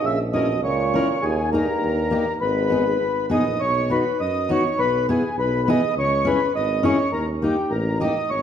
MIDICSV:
0, 0, Header, 1, 5, 480
1, 0, Start_track
1, 0, Key_signature, 5, "minor"
1, 0, Tempo, 592300
1, 32, Time_signature, 2, 2, 24, 8
1, 2911, Key_signature, 5, "major"
1, 4352, Tempo, 584795
1, 6856, End_track
2, 0, Start_track
2, 0, Title_t, "Accordion"
2, 0, Program_c, 0, 21
2, 46, Note_on_c, 0, 76, 100
2, 153, Note_off_c, 0, 76, 0
2, 274, Note_on_c, 0, 75, 96
2, 494, Note_off_c, 0, 75, 0
2, 521, Note_on_c, 0, 73, 95
2, 991, Note_on_c, 0, 68, 92
2, 1007, Note_off_c, 0, 73, 0
2, 1215, Note_off_c, 0, 68, 0
2, 1238, Note_on_c, 0, 70, 89
2, 1915, Note_off_c, 0, 70, 0
2, 1952, Note_on_c, 0, 71, 89
2, 2644, Note_off_c, 0, 71, 0
2, 2688, Note_on_c, 0, 75, 97
2, 2921, Note_on_c, 0, 73, 113
2, 2926, Note_off_c, 0, 75, 0
2, 3169, Note_off_c, 0, 73, 0
2, 3173, Note_on_c, 0, 71, 91
2, 3408, Note_off_c, 0, 71, 0
2, 3408, Note_on_c, 0, 75, 94
2, 3651, Note_off_c, 0, 75, 0
2, 3654, Note_on_c, 0, 73, 94
2, 3882, Note_on_c, 0, 71, 109
2, 3887, Note_off_c, 0, 73, 0
2, 4104, Note_off_c, 0, 71, 0
2, 4135, Note_on_c, 0, 68, 84
2, 4345, Note_off_c, 0, 68, 0
2, 4369, Note_on_c, 0, 71, 92
2, 4612, Note_on_c, 0, 75, 104
2, 4613, Note_off_c, 0, 71, 0
2, 4824, Note_off_c, 0, 75, 0
2, 4863, Note_on_c, 0, 73, 115
2, 5092, Note_on_c, 0, 71, 101
2, 5097, Note_off_c, 0, 73, 0
2, 5302, Note_off_c, 0, 71, 0
2, 5327, Note_on_c, 0, 75, 102
2, 5568, Note_off_c, 0, 75, 0
2, 5569, Note_on_c, 0, 73, 102
2, 5780, Note_off_c, 0, 73, 0
2, 5796, Note_on_c, 0, 70, 91
2, 5904, Note_off_c, 0, 70, 0
2, 6045, Note_on_c, 0, 67, 90
2, 6274, Note_on_c, 0, 70, 78
2, 6281, Note_off_c, 0, 67, 0
2, 6498, Note_off_c, 0, 70, 0
2, 6515, Note_on_c, 0, 75, 98
2, 6758, Note_off_c, 0, 75, 0
2, 6759, Note_on_c, 0, 73, 103
2, 6856, Note_off_c, 0, 73, 0
2, 6856, End_track
3, 0, Start_track
3, 0, Title_t, "Steel-string acoustic guitar"
3, 0, Program_c, 1, 25
3, 271, Note_on_c, 1, 61, 55
3, 278, Note_on_c, 1, 64, 58
3, 291, Note_on_c, 1, 70, 53
3, 379, Note_off_c, 1, 61, 0
3, 383, Note_off_c, 1, 64, 0
3, 389, Note_off_c, 1, 70, 0
3, 759, Note_on_c, 1, 61, 55
3, 769, Note_on_c, 1, 64, 59
3, 773, Note_on_c, 1, 70, 68
3, 862, Note_off_c, 1, 61, 0
3, 867, Note_off_c, 1, 64, 0
3, 869, Note_off_c, 1, 70, 0
3, 1237, Note_on_c, 1, 58, 52
3, 1245, Note_on_c, 1, 63, 49
3, 1252, Note_on_c, 1, 68, 67
3, 1339, Note_off_c, 1, 58, 0
3, 1343, Note_off_c, 1, 63, 0
3, 1347, Note_off_c, 1, 68, 0
3, 1707, Note_on_c, 1, 58, 60
3, 1718, Note_on_c, 1, 63, 54
3, 1721, Note_on_c, 1, 67, 69
3, 1813, Note_off_c, 1, 58, 0
3, 1819, Note_off_c, 1, 63, 0
3, 1820, Note_off_c, 1, 67, 0
3, 2186, Note_on_c, 1, 59, 51
3, 2189, Note_on_c, 1, 63, 45
3, 2204, Note_on_c, 1, 68, 61
3, 2293, Note_off_c, 1, 59, 0
3, 2295, Note_off_c, 1, 63, 0
3, 2302, Note_off_c, 1, 68, 0
3, 2671, Note_on_c, 1, 59, 64
3, 2680, Note_on_c, 1, 63, 59
3, 2682, Note_on_c, 1, 68, 71
3, 2779, Note_off_c, 1, 59, 0
3, 2784, Note_off_c, 1, 63, 0
3, 2784, Note_off_c, 1, 68, 0
3, 3159, Note_on_c, 1, 59, 52
3, 3165, Note_on_c, 1, 63, 46
3, 3169, Note_on_c, 1, 66, 58
3, 3264, Note_off_c, 1, 59, 0
3, 3268, Note_off_c, 1, 63, 0
3, 3270, Note_off_c, 1, 66, 0
3, 3639, Note_on_c, 1, 59, 63
3, 3644, Note_on_c, 1, 63, 60
3, 3654, Note_on_c, 1, 66, 67
3, 3744, Note_off_c, 1, 59, 0
3, 3747, Note_off_c, 1, 63, 0
3, 3751, Note_off_c, 1, 66, 0
3, 4124, Note_on_c, 1, 59, 63
3, 4132, Note_on_c, 1, 64, 60
3, 4134, Note_on_c, 1, 68, 65
3, 4225, Note_off_c, 1, 59, 0
3, 4230, Note_off_c, 1, 64, 0
3, 4230, Note_off_c, 1, 68, 0
3, 4605, Note_on_c, 1, 59, 70
3, 4609, Note_on_c, 1, 64, 63
3, 4619, Note_on_c, 1, 68, 81
3, 4707, Note_off_c, 1, 59, 0
3, 4709, Note_off_c, 1, 64, 0
3, 4714, Note_off_c, 1, 68, 0
3, 5073, Note_on_c, 1, 61, 72
3, 5086, Note_on_c, 1, 64, 57
3, 5090, Note_on_c, 1, 68, 62
3, 5179, Note_off_c, 1, 61, 0
3, 5186, Note_off_c, 1, 64, 0
3, 5188, Note_off_c, 1, 68, 0
3, 5551, Note_on_c, 1, 61, 67
3, 5561, Note_on_c, 1, 64, 62
3, 5568, Note_on_c, 1, 68, 71
3, 5657, Note_off_c, 1, 61, 0
3, 5662, Note_off_c, 1, 64, 0
3, 5666, Note_off_c, 1, 68, 0
3, 6037, Note_on_c, 1, 58, 56
3, 6049, Note_on_c, 1, 63, 52
3, 6054, Note_on_c, 1, 67, 56
3, 6140, Note_off_c, 1, 58, 0
3, 6146, Note_off_c, 1, 63, 0
3, 6147, Note_off_c, 1, 67, 0
3, 6512, Note_on_c, 1, 58, 56
3, 6519, Note_on_c, 1, 63, 59
3, 6523, Note_on_c, 1, 67, 73
3, 6619, Note_off_c, 1, 58, 0
3, 6622, Note_off_c, 1, 63, 0
3, 6624, Note_off_c, 1, 67, 0
3, 6856, End_track
4, 0, Start_track
4, 0, Title_t, "Euphonium"
4, 0, Program_c, 2, 58
4, 11, Note_on_c, 2, 49, 78
4, 126, Note_off_c, 2, 49, 0
4, 270, Note_on_c, 2, 47, 73
4, 492, Note_off_c, 2, 47, 0
4, 501, Note_on_c, 2, 46, 90
4, 950, Note_off_c, 2, 46, 0
4, 984, Note_on_c, 2, 39, 80
4, 1211, Note_off_c, 2, 39, 0
4, 1221, Note_on_c, 2, 43, 74
4, 1906, Note_off_c, 2, 43, 0
4, 1956, Note_on_c, 2, 44, 75
4, 2646, Note_off_c, 2, 44, 0
4, 6856, End_track
5, 0, Start_track
5, 0, Title_t, "Tuba"
5, 0, Program_c, 3, 58
5, 35, Note_on_c, 3, 34, 84
5, 515, Note_on_c, 3, 37, 81
5, 527, Note_off_c, 3, 34, 0
5, 824, Note_off_c, 3, 37, 0
5, 995, Note_on_c, 3, 39, 91
5, 1303, Note_off_c, 3, 39, 0
5, 1474, Note_on_c, 3, 39, 89
5, 1782, Note_off_c, 3, 39, 0
5, 1953, Note_on_c, 3, 32, 99
5, 2430, Note_off_c, 3, 32, 0
5, 2439, Note_on_c, 3, 32, 70
5, 2655, Note_off_c, 3, 32, 0
5, 2684, Note_on_c, 3, 34, 79
5, 2893, Note_off_c, 3, 34, 0
5, 2928, Note_on_c, 3, 35, 87
5, 3236, Note_off_c, 3, 35, 0
5, 3405, Note_on_c, 3, 42, 83
5, 3712, Note_off_c, 3, 42, 0
5, 3878, Note_on_c, 3, 35, 88
5, 4188, Note_off_c, 3, 35, 0
5, 4353, Note_on_c, 3, 35, 99
5, 4665, Note_off_c, 3, 35, 0
5, 4833, Note_on_c, 3, 37, 97
5, 5143, Note_off_c, 3, 37, 0
5, 5318, Note_on_c, 3, 32, 86
5, 5626, Note_off_c, 3, 32, 0
5, 5793, Note_on_c, 3, 39, 84
5, 6103, Note_off_c, 3, 39, 0
5, 6265, Note_on_c, 3, 33, 98
5, 6579, Note_off_c, 3, 33, 0
5, 6757, Note_on_c, 3, 32, 79
5, 6856, Note_off_c, 3, 32, 0
5, 6856, End_track
0, 0, End_of_file